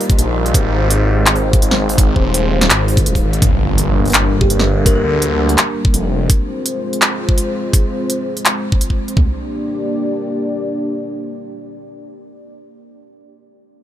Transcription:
Already playing: G3 A#3 D#4 F4 A#4
0.01 open hi-hat
0.10 kick, closed hi-hat
0.19 A#1, closed hi-hat
0.46 closed hi-hat
0.54 G#1 G#3 C4 C5, kick, closed hi-hat
0.90 closed hi-hat
1.26 clap, closed hi-hat
1.36 open hi-hat
1.53 kick, closed hi-hat
1.62 G#1, closed hi-hat
1.71 snare
1.89 open hi-hat
1.98 kick, closed hi-hat
2.16 D#1, kick
2.34 closed hi-hat
2.61 snare, closed hi-hat
2.70 G#1, clap, closed hi-hat
2.88 open hi-hat
2.97 kick, closed hi-hat
3.06 closed hi-hat
3.15 kick, open hi-hat
3.24 G#1
3.33 closed hi-hat
3.42 G1 G3 A#3 D4 A#4, kick, closed hi-hat, impact
3.78 closed hi-hat
4.05 closed hi-hat
4.08 closed hi-hat
4.10 closed hi-hat
4.12 clap, closed hi-hat
4.14 closed hi-hat
4.41 G4, kick
4.50 G1, closed hi-hat
4.60 snare
4.86 A#4, kick, closed hi-hat
4.95 A#4
5.04 D2
5.22 closed hi-hat
5.49 closed hi-hat
5.58 clap, closed hi-hat
5.85 kick
5.94 F1, closed hi-hat
6.30 G#3 C4 F4 C5, kick, closed hi-hat
6.66 closed hi-hat
6.93 closed hi-hat
7.02 clap, closed hi-hat
7.29 kick
7.38 closed hi-hat
7.73 kick, closed hi-hat
8.10 closed hi-hat
8.37 closed hi-hat
8.45 clap, closed hi-hat
8.72 kick
8.81 closed hi-hat
8.90 kick
9.08 closed hi-hat
9.17 A#3 D4 G4 D5, kick, floor tom

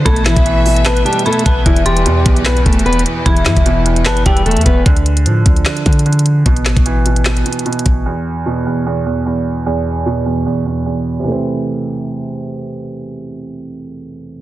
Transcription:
0.05 A1 B2 A3 A4 B4 E5 B5, kick, closed hi-hat
0.16 closed hi-hat
0.25 E3 E4, snare, clap, closed hi-hat
0.36 A1, kick, closed hi-hat
0.46 E3, closed hi-hat
0.66 B2, open hi-hat
0.76 closed hi-hat
0.85 B3 B4 A5, snare, clap, closed hi-hat
0.97 closed hi-hat
1.05 B2 G3 G4 A5, closed hi-hat
1.13 closed hi-hat
1.19 closed hi-hat
1.26 B2 A3 A4 B5, closed hi-hat
1.33 closed hi-hat
1.39 closed hi-hat
1.46 A1 B3 B4 A5, kick, closed hi-hat
1.66 E1 E2 E3 E4 G4, kick, closed hi-hat
1.76 closed hi-hat
1.86 G3 G4 C6, closed hi-hat
1.97 closed hi-hat
2.06 E2 B2, closed hi-hat
2.26 B1 E2, kick, closed hi-hat
2.37 closed hi-hat
2.45 E2 B3 B4, snare, clap, closed hi-hat
2.57 closed hi-hat
2.65 E1 E2 A3 A4, kick, closed hi-hat
2.73 closed hi-hat
2.79 closed hi-hat
2.86 E2 B3 B4, closed hi-hat
2.93 closed hi-hat
2.99 closed hi-hat
3.06 closed hi-hat
3.26 E1 E2 E3 E4 B5, kick, closed hi-hat
3.37 closed hi-hat
3.45 G2 E3 E4, snare, clap, closed hi-hat
3.57 E1, kick, closed hi-hat
3.66 B2, closed hi-hat
3.86 E2, closed hi-hat
3.96 closed hi-hat
4.05 G1 E2 B3 B4 A5, snare, clap, closed hi-hat
4.17 closed hi-hat
4.26 E1 E2 G3 G4 G5, kick, closed hi-hat
4.37 closed hi-hat
4.46 E2 A3 A4, closed hi-hat
4.51 closed hi-hat
4.57 E2, closed hi-hat
4.61 closed hi-hat
4.66 E1 B3 B4, kick, closed hi-hat
4.86 D2 D3, kick, closed hi-hat
4.97 closed hi-hat
5.06 closed hi-hat
5.17 closed hi-hat
5.26 A2 F3, closed hi-hat
5.46 D2 D3, kick, closed hi-hat
5.56 closed hi-hat
5.65 D3, snare, clap, closed hi-hat
5.77 closed hi-hat
5.86 D3, kick, closed hi-hat
5.93 closed hi-hat
5.99 closed hi-hat
6.06 D3, closed hi-hat
6.13 closed hi-hat
6.19 closed hi-hat
6.26 closed hi-hat
6.46 A1 B2, kick, closed hi-hat
6.56 closed hi-hat
6.65 snare, clap, closed hi-hat
6.77 A1, kick, closed hi-hat
6.86 E3, closed hi-hat
7.06 B2, closed hi-hat
7.16 closed hi-hat
7.25 B2, snare, clap, closed hi-hat
7.37 closed hi-hat
7.46 B2, closed hi-hat
7.53 closed hi-hat
7.59 closed hi-hat
7.66 B2, closed hi-hat
7.73 closed hi-hat
7.79 closed hi-hat
7.86 A1, kick, closed hi-hat
8.06 E2
8.46 B2
8.66 E2
8.86 E2
9.06 E2
9.26 E2
9.66 E2
10.06 B2
10.26 E2
10.46 E2
10.66 E2
10.86 E2
11.20 C3
11.24 E3
11.28 A3 C4

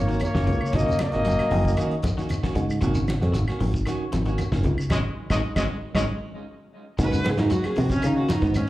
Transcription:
Already playing: G#1 A#3 C#5
0.08 D#3 A#3 C#4 F#4, closed hi-hat, shekere
0.20 closed hi-hat, high conga, claves
0.24 A#3 C#5, shekere
0.34 F#1 D#3 A#3 C#4 F#4, kick, snare
0.40 shekere
0.47 C#2 C#3, kick, closed hi-hat, high conga
0.52 shekere
0.61 muted fingered electric bass stroke, claves
0.66 shekere
0.72 G#1 C3 D#3 C#4 F#4 D#5, muted clean electric guitar stroke, kick, snare, closed hi-hat, low conga
0.76 A#3, shekere
0.87 C#3, closed hi-hat
0.91 shekere
0.99 A#3 D#5, muted fingered electric bass stroke, snare, closed hi-hat, high conga, claves
1.12 G#1 A#3 C#4 F#4, snare, closed hi-hat, high conga
1.25 F#1 F#3, closed hi-hat
1.29 shekere
1.38 A#3 C#4 F#4, muted fingered electric bass stroke, snare, closed hi-hat, claves
1.51 F#1 F3, open hi-hat, high conga, low conga
1.55 shekere
1.65 kick, low conga, shekere
1.77 D#3 A#3 C#4 F#4, closed hi-hat, claves, shekere
1.91 closed hi-hat
2.02 F3, kick, closed hi-hat, high conga, shekere
2.17 D#3 A#3 C#4 F#4, snare, shekere
2.29 closed hi-hat, high conga, claves, shekere
2.43 D#3 A#3 C#4 F#4, kick, snare, shekere
2.55 G#2 C#3, kick, closed hi-hat, high conga, shekere
2.70 claves, shekere
2.81 G#1 C3 D#3 A#3 C#4 F#4, kick, closed hi-hat, low conga, shekere
2.95 C#3, closed hi-hat, shekere
3.07 snare, closed hi-hat, high conga, claves
3.21 F2 A#3 C#4 F#4, snare, closed hi-hat, high conga
3.34 G#1, muted clean electric guitar stroke, closed hi-hat, high conga, shekere
3.48 A#3 C#4 F#4, muted fingered electric bass stroke, snare, claves
3.60 G#1 F3, open hi-hat, high conga, low conga, shekere
3.74 kick, closed hi-hat, shekere
3.86 D#3 C#4 F#4, muted clean electric guitar stroke, snare, closed hi-hat, claves, shekere
4.12 G#1 F3, snare, closed hi-hat, high conga, shekere
4.25 D#3 A#3 C#4 F#4, closed hi-hat, shekere
4.38 closed hi-hat, high conga, claves, shekere
4.52 F#1 D#3 A#3 C#4, kick, snare, shekere
4.63 C#2 C#3, kick, closed hi-hat, high conga, shekere
4.78 claves, shekere
4.90 G#1 D#3 F#3 G#3 C#4 D#4 D#5, kick, snare, high conga, claves, shekere
5.30 G#1 D#3 F#3 G#3 C#4 D#4 D#5, kick, snare, high conga, claves, shekere
5.56 G#1 D#3 F#3 G#3 C#4 D#4 D#5, kick, snare, high conga, claves, shekere
5.94 G#1 D#3 F#3 G#3 C#4 D#4 D#5, kick, snare, high conga, claves, shekere
6.98 G#2 C3 D#3 A#3 C#4 F#4, kick, closed hi-hat, low conga, shekere
7.04 B4
7.12 C#3, closed hi-hat, shekere
7.24 snare, closed hi-hat, high conga, claves
7.29 G#4
7.37 G#2 A#3 C#4 D#4 F#4, snare, closed hi-hat, high conga
7.50 F#3 F#4, closed hi-hat, shekere
7.63 A#3 C#4 F#4 G#4, muted fingered electric bass stroke, snare, closed hi-hat, claves
7.76 C3 F3, open hi-hat, high conga, low conga, shekere
7.80 F#4
7.89 C#4, kick, snare, closed hi-hat, low conga, shekere
8.02 C#3 D#3 D#4, closed hi-hat, claves, shekere
8.16 A#3 C#4 F#4
8.29 F3 D#4, snare, closed hi-hat, high conga, shekere
8.42 G#2 D#3 B3, kick, closed hi-hat, shekere
8.54 C#4, closed hi-hat, high conga, claves, shekere

